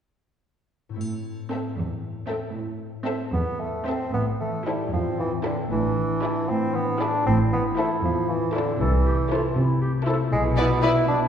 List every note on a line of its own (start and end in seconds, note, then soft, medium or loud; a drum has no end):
0.89 4.13 A2 soft
0.89 4.82 C4 soft
0.94 4.65 E4 soft
0.94 4.86 A4 soft
1.00 1.63 A2 soft
1.00 triangle soft
1.52 1.72 C4 soft
1.52 1.72 A4 soft
1.52 1.72 E5 soft
1.78 2.39 E2 soft
2.29 2.48 C4 soft
2.29 2.48 A4 soft
2.29 2.48 E5 soft
2.54 3.17 A2 medium
3.05 3.26 C4 soft
3.05 3.26 A4 soft
3.05 3.25 E5 soft
3.32 3.98 E2 medium
3.32 3.62 B3 medium
3.60 3.87 A3 medium
3.87 4.07 C4 soft
3.87 4.13 C4 medium
3.87 4.08 A4 soft
3.87 4.07 E5 soft
4.14 4.63 A1 medium
4.14 4.77 A2 soft
4.14 5.70 A2 soft
4.14 4.26 B3 medium
4.40 5.17 E3 soft
4.40 4.68 A3 medium
4.66 4.93 G3 medium
4.66 6.22 E4 soft
4.66 4.86 E4 soft
4.66 4.87 A4 soft
4.66 4.86 C5 soft
4.92 5.55 E2 soft
4.92 5.19 F3 medium
4.92 5.44 C4 soft
4.92 5.67 C4 soft
5.18 5.73 E3 soft
5.18 5.31 E3 medium
5.45 5.57 D3 medium
5.45 5.73 C4 soft
5.45 5.64 E4 soft
5.45 5.64 A4 soft
5.45 5.65 C5 soft
5.70 6.19 A1 soft
5.70 6.33 A2 soft
5.70 7.25 A2 soft
5.70 6.50 E3 medium
5.70 6.50 D4 soft
5.97 6.73 E3 soft
6.23 6.42 E4 soft
6.23 7.77 E4 soft
6.23 6.43 G#4 soft
6.23 6.42 D5 soft
6.48 7.11 A2 soft
6.48 6.76 C4 medium
6.48 6.99 D4 soft
6.48 7.25 E4 soft
6.75 7.29 E3 soft
6.75 7.02 B3 medium
7.01 7.26 D4 medium
7.01 7.20 E4 soft
7.01 7.20 G#4 soft
7.01 7.20 D5 soft
7.26 7.75 A1 medium
7.26 8.82 A2 soft
7.26 7.88 A2 medium
7.26 7.38 C4 medium
7.26 8.77 E4 medium
7.53 8.29 E3 soft
7.53 7.64 B3 medium
7.78 7.90 A3 medium
7.78 9.30 E4 soft
7.78 7.98 E4 soft
7.78 7.97 A4 soft
7.78 7.97 C5 soft
8.04 8.65 E2 medium
8.04 8.31 F3 medium
8.04 8.54 C4 soft
8.29 8.54 E3 medium
8.29 8.83 E3 soft
8.55 8.80 D3 medium
8.55 9.55 C4 soft
8.55 8.74 E4 medium
8.55 8.74 A4 soft
8.55 8.74 C5 soft
8.80 9.27 C2 medium
8.80 9.41 C3 medium
8.80 10.34 C3 medium
8.80 9.55 E3 medium
8.80 8.92 A4 medium
9.05 9.80 A3 soft
9.05 9.17 G4 medium
9.31 10.81 E4 soft
9.31 9.50 E4 soft
9.31 9.42 F4 medium
9.31 9.50 A4 soft
9.31 9.50 C5 soft
9.56 10.16 C3 medium
9.56 10.06 C4 soft
9.56 9.80 E4 medium
9.81 10.34 A3 soft
9.81 9.92 G4 medium
10.06 10.34 C4 soft
10.06 10.26 E4 medium
10.06 10.18 A4 soft
10.06 10.26 A4 medium
10.06 10.26 C5 medium
10.32 10.79 B1 medium
10.32 10.95 B2 medium
10.32 11.28 B2 medium
10.32 10.44 G#3 medium
10.32 11.28 E4 medium
10.56 11.28 B3 soft
10.56 10.84 B3 medium
10.56 10.66 E4 soft
10.56 10.65 B4 soft
10.56 10.64 D5 soft
10.82 11.28 E4 soft
10.82 11.08 E4 medium
10.82 10.91 E4 soft
10.82 10.90 B4 soft
10.82 10.90 D5 soft
11.08 11.28 B2 medium
11.08 11.28 D4 soft
11.08 11.20 D4 medium